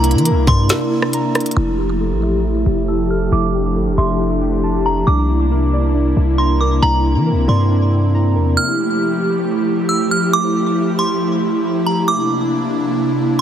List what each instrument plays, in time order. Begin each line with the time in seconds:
Already playing: 808-style bass C2, analog synth pad C3 A#3 D4 E4, synth keys D4 A#4 A#5, synth bell A#5
0.04 synth keys E4, closed hi-hat
0.11 808-style bass E3, closed hi-hat
0.18 closed hi-hat
0.25 synth keys A#4, closed hi-hat
0.31 808-style bass C2
0.47 808-style bass G2, synth keys D5, synth bell C6, kick
0.69 synth keys D4, snare, closed hi-hat
0.91 synth keys E4
1.02 cross-stick
1.13 synth keys A#5, closed hi-hat
1.34 synth keys A#4, cross-stick, closed hi-hat
1.40 closed hi-hat
1.46 closed hi-hat
1.51 closed hi-hat
1.57 808-style bass F1, analog synth pad F3 A3 E4 G4, synth keys E4, synth bell F6
1.78 synth keys G4
2.00 synth keys A4
2.11 808-style bass A1
2.23 synth keys E5
2.44 synth keys E4
2.66 808-style bass F1, synth keys G4
2.88 synth keys A5, synth bell E6
3.10 synth keys A4, synth bell F6
3.32 808-style bass F1, analog synth pad D4, synth keys E4, synth bell D6
3.54 synth keys G4
3.76 808-style bass G1, synth keys A4
3.87 808-style bass F1
3.98 808-style bass F1, synth keys E5, synth bell C6
4.20 synth keys E4
4.41 synth keys G4
4.63 synth keys A5
4.85 synth keys A4, synth bell A#5
5.07 808-style bass C2, analog synth pad C3 A#3 E4, synth keys D4, synth bell D6
5.29 synth keys E4
5.51 synth keys A#4
5.73 synth keys D5
5.94 synth keys D4
6.17 808-style bass C2, synth keys E4
6.38 synth keys A#5, synth bell C6
6.61 synth keys A#4, synth bell D6
6.82 808-style bass C2, analog synth pad C4, synth keys D4, synth bell A#5
7.05 synth keys E4
7.15 808-style bass E3
7.26 synth keys A#4
7.32 808-style bass C2
7.48 808-style bass G2, synth keys D5, synth bell C6
7.70 synth keys D4
7.92 synth keys E4
8.15 synth keys A#5
8.35 808-style bass E2, synth keys A#4
8.57 analog synth pad F3 A3 E4 G4, synth bell F6
9.89 synth bell E6
10.11 synth bell F6
10.33 synth bell D6
10.99 synth bell C6
11.86 synth bell A#5
12.08 analog synth pad C3 A#3 D4, synth bell D6